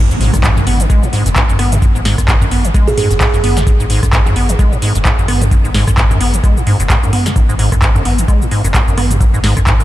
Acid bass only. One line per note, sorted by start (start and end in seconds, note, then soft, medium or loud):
0.11 0.16 G#2 medium
0.21 0.31 G#2 loud
0.34 0.37 F#2 loud
0.44 0.51 G#2 loud
0.57 0.65 F#2 medium
0.67 0.81 B3 medium
0.80 0.85 D#3 loud
0.90 1.04 G#3 medium
1.03 1.08 G#2 medium
1.13 1.24 G#2 loud
1.26 1.29 F#2 loud
1.36 1.43 G#2 loud
1.49 1.57 F#2 medium
1.59 1.74 B3 medium
1.72 1.78 B2 loud
1.82 1.86 G#2 medium
1.95 2.01 G#2 medium
2.05 2.16 G#2 loud
2.18 2.22 F#2 loud
2.28 2.35 G#2 loud
2.41 2.50 F#2 medium
2.51 2.66 B3 medium
2.64 2.70 D#3 loud
2.74 2.89 G#3 medium
2.88 2.93 G#2 medium
2.98 3.08 G#2 loud
3.11 3.14 F#2 loud
3.21 3.28 G#2 loud
3.34 3.42 F#2 medium
3.44 3.58 B3 medium
3.57 3.62 B2 loud
3.67 3.71 G#2 medium
3.80 3.85 G#2 medium
3.90 4.01 G#2 loud
4.03 4.06 F#2 loud
4.13 4.20 G#2 loud
4.26 4.34 F#2 medium
4.36 4.51 B3 medium
4.49 4.55 D#3 loud
4.59 4.74 G#3 medium
4.72 4.78 G#2 medium
4.82 4.93 G#2 loud
4.95 4.99 F#2 loud
5.05 5.12 G#2 loud
5.18 5.27 F#2 medium
5.28 5.43 B3 medium
5.41 5.47 B2 loud
5.51 5.56 G#2 medium
5.64 5.70 G#2 medium
5.74 5.85 G#2 loud
5.88 5.91 F#2 loud
5.98 6.05 G#2 loud
6.11 6.19 F#2 medium
6.21 6.35 B3 medium
6.34 6.39 D#3 loud
6.44 6.58 G#3 medium
6.57 6.62 G#2 medium
6.67 6.78 G#2 loud
6.80 6.83 F#2 loud
6.90 6.97 G#2 loud
7.03 7.11 F#2 medium
7.13 7.27 B3 medium
7.26 7.31 B2 loud
7.36 7.40 G#2 medium
7.49 7.55 G#2 loud
7.59 7.70 G#2 loud
7.72 7.75 F#2 loud
7.82 7.89 G#2 loud
7.95 8.03 F#2 medium
8.05 8.20 B3 medium
8.18 8.24 D#3 loud
8.28 8.43 G#3 medium
8.41 8.47 G#2 medium
8.51 8.62 G#2 loud
8.65 8.68 F#2 loud
8.74 8.82 G#2 loud
8.88 8.96 F#2 medium
8.97 9.12 B3 medium
9.11 9.16 B2 loud
9.21 9.25 G#2 medium
9.34 9.39 G#2 loud
9.44 9.54 G#2 loud
9.57 9.60 F#2 loud
9.67 9.74 G#2 loud
9.80 9.84 F#2 medium